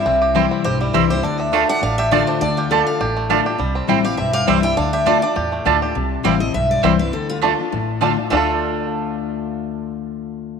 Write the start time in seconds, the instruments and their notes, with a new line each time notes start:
Already playing: five-string banjo G3 E4, steel-string acoustic guitar E5
0.06 upright bass C2, steel-string acoustic guitar C3, five-string banjo C4
0.22 five-string banjo G4
0.34 steel-string acoustic guitar E3 G3 C4 E4, mandolin C4 E4 C5 G5, five-string banjo E4
0.51 five-string banjo C4
0.64 upright bass B1, steel-string acoustic guitar G2 C5, five-string banjo G4
0.81 five-string banjo G3, steel-string acoustic guitar E4
0.93 upright bass C2, steel-string acoustic guitar E3 G3 C4 E4 G4, mandolin C4 E4 C5 G5, five-string banjo E4
1.10 steel-string acoustic guitar C4 E4 C5, five-string banjo G4
1.23 upright bass D2, steel-string acoustic guitar D3 D5, five-string banjo D4
1.40 five-string banjo D4, steel-string acoustic guitar E5
1.52 steel-string acoustic guitar D3 A3 D4 F4 F5, mandolin A3 F4 D5 A5, five-string banjo A3
1.69 five-string banjo D4, steel-string acoustic guitar F#5
1.81 upright bass A1, steel-string acoustic guitar A2 F5, five-string banjo D4
1.98 five-string banjo G4, steel-string acoustic guitar E5
2.11 steel-string acoustic guitar D3 A3 D4 F4 D5, mandolin A3 F4 D5 A5, five-string banjo A3
2.27 five-string banjo D4, steel-string acoustic guitar C5
2.41 upright bass D2, steel-string acoustic guitar D3 D5, five-string banjo D4
2.57 steel-string acoustic guitar F4, five-string banjo G4
2.70 steel-string acoustic guitar D3 A3 D4 F4 A4, mandolin A3 F4 D5 A5, five-string banjo D4
2.87 five-string banjo D4, steel-string acoustic guitar F5
3.00 upright bass A1, steel-string acoustic guitar A2, five-string banjo G4
3.17 five-string banjo A3
3.29 steel-string acoustic guitar D3 A3 D4 F4, mandolin A3 F4 D5 A5, five-string banjo D4
3.45 steel-string acoustic guitar D4 F4, five-string banjo G4
3.58 upright bass C2, steel-string acoustic guitar C3, five-string banjo G3
3.75 five-string banjo C4
3.87 upright bass A1, steel-string acoustic guitar E3 G3 C4 E4, mandolin C4 E4 C5 G5, five-string banjo E4
4.04 steel-string acoustic guitar C4 E4 F5, five-string banjo G4
4.17 upright bass B1, steel-string acoustic guitar G2 E5, five-string banjo C4
4.33 five-string banjo G4, steel-string acoustic guitar F5
4.46 upright bass C2, steel-string acoustic guitar E3 G3 C4 E4 E5, five-string banjo G3, mandolin C4 E4 C5 G5
4.62 steel-string acoustic guitar C4 E4 G5, five-string banjo E4
4.77 upright bass D2, steel-string acoustic guitar D3 F5, five-string banjo D4
4.93 five-string banjo G4, steel-string acoustic guitar E5
5.05 steel-string acoustic guitar D3 A3 D4 F4 D5, mandolin A3 F4 D5 A5, five-string banjo D4
5.22 five-string banjo D4, steel-string acoustic guitar D4 F4 D5
5.36 upright bass E2, steel-string acoustic guitar A2, five-string banjo G4
5.52 five-string banjo A3
5.65 upright bass D2, steel-string acoustic guitar D3 A3 D4 F4, mandolin A3 F4 D5 A5, five-string banjo D4
5.81 steel-string acoustic guitar D4 F4, five-string banjo G4
5.95 upright bass C2, steel-string acoustic guitar C3
6.23 upright bass A1, steel-string acoustic guitar E3 G3 C4 E4 F5, five-string banjo G3 C4 E4, mandolin C4 E4 C5 G5
6.40 steel-string acoustic guitar C4 E4 D#5
6.54 upright bass B1, steel-string acoustic guitar G2 E5
6.71 steel-string acoustic guitar D5
6.83 upright bass C2, steel-string acoustic guitar E3 G3 C4 E4 C5, five-string banjo G3 C4 E4, mandolin C4 E4 C5 G5
6.99 steel-string acoustic guitar C4 E4 B4
7.13 upright bass D2, steel-string acoustic guitar D3 A4
7.29 steel-string acoustic guitar F4
7.42 steel-string acoustic guitar D3 A3 D4 F4, mandolin A3 F4 D5 A5, five-string banjo A3 D4
7.59 steel-string acoustic guitar D4 F4
7.72 upright bass A1, steel-string acoustic guitar A2
8.01 steel-string acoustic guitar D3 A3 D4 F4, mandolin A3 F4 D5 A5, five-string banjo A3 D4
8.17 steel-string acoustic guitar D4 F4
8.30 upright bass D2, steel-string acoustic guitar D3 A3 D4 F4, mandolin A3 F4 D5 A5, five-string banjo A3 D4
8.35 five-string banjo F4 A4